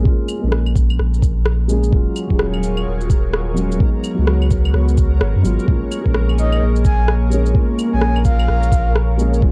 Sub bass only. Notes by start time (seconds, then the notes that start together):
0.44 A#1
1.00 A#1
1.93 D#1
2.30 D#1
2.87 D#1
4.18 C#2
4.74 C#2
5.21 G#1
5.36 F#2
5.45 G#1
5.68 A#1
6.06 A#1
6.62 A#1
7.94 A#1
8.49 A#1
9.42 D#1